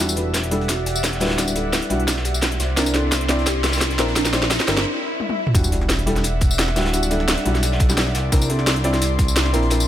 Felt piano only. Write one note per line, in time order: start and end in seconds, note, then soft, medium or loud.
0.00 0.15 G3 medium
0.00 0.15 D4 medium
0.00 0.15 E4 medium
0.00 0.15 F#4 loud
0.17 0.50 G3 medium
0.17 0.50 D4 medium
0.17 0.50 E4 medium
0.17 0.50 F#4 medium
0.51 0.67 G3 medium
0.51 0.68 D4 medium
0.51 0.68 E4 medium
0.51 0.68 A4 loud
1.21 1.36 G3 medium
1.21 1.36 D4 medium
1.21 1.37 E4 medium
1.21 1.37 F#4 loud
1.38 1.54 G3 medium
1.38 1.54 D4 medium
1.38 1.54 E4 medium
1.38 1.54 F#4 medium
1.55 1.88 G3 medium
1.55 1.89 D4 medium
1.55 1.89 E4 medium
1.55 1.89 A4 medium
1.90 2.06 G3 medium
1.90 2.06 D4 medium
1.90 2.06 E4 medium
1.90 2.07 F#4 medium
2.76 2.92 C4 medium
2.76 2.92 D4 medium
2.76 2.93 E4 medium
2.76 2.93 A#4 loud
2.94 3.27 C4 medium
2.94 3.27 D4 medium
2.94 3.27 E4 medium
2.94 3.27 A4 medium
3.29 3.45 C4 loud
3.29 3.45 D4 medium
3.29 3.45 E4 medium
3.29 3.45 D5 loud
3.98 4.14 C4 medium
3.98 4.14 D4 medium
3.98 4.14 E4 medium
3.98 4.14 A#4 loud
4.16 4.31 C4 medium
4.16 4.31 D4 medium
4.16 4.32 E4 medium
4.16 4.32 A#4 medium
4.33 4.66 C4 medium
4.33 4.66 D4 medium
4.33 4.66 E4 medium
4.33 4.66 D5 medium
4.68 4.84 C4 medium
4.68 4.84 D4 medium
4.68 4.84 E4 medium
4.68 4.84 A#4 medium
5.54 5.70 G3 medium
5.54 5.70 D4 medium
5.54 5.70 E4 medium
5.54 5.70 F#4 loud
5.72 6.05 G3 medium
5.72 6.05 D4 medium
5.72 6.05 E4 medium
5.72 6.05 F#4 medium
6.06 6.22 G3 loud
6.06 6.23 D4 medium
6.06 6.23 E4 medium
6.06 6.23 A4 loud
6.76 6.91 G3 medium
6.76 6.91 D4 medium
6.76 6.92 E4 medium
6.76 6.92 F#4 loud
6.93 7.09 G3 medium
6.93 7.09 D4 medium
6.93 7.09 E4 medium
6.93 7.09 F#4 medium
7.10 7.43 G3 medium
7.10 7.43 D4 medium
7.10 7.44 E4 medium
7.10 7.44 A4 medium
7.45 7.61 G3 medium
7.45 7.61 D4 medium
7.45 7.62 E4 medium
7.45 7.62 F#4 loud
7.89 7.99 G3 medium
7.89 7.99 D4 medium
7.89 7.99 E4 medium
7.89 7.99 G4 loud
8.32 8.47 C4 medium
8.32 8.47 D4 medium
8.32 8.48 E4 medium
8.32 8.48 A#4 loud
8.49 8.82 C4 medium
8.49 8.82 D4 medium
8.49 8.82 E4 medium
8.49 8.83 A4 medium
8.84 9.00 C4 medium
8.84 9.00 D4 medium
8.84 9.00 E4 medium
8.84 9.00 D5 loud
9.53 9.69 C4 medium
9.53 9.69 D4 medium
9.53 9.69 E4 medium
9.53 9.69 A#4 loud
9.71 9.86 C4 medium
9.71 9.86 D4 medium
9.71 9.86 E4 medium
9.71 9.87 A#4 medium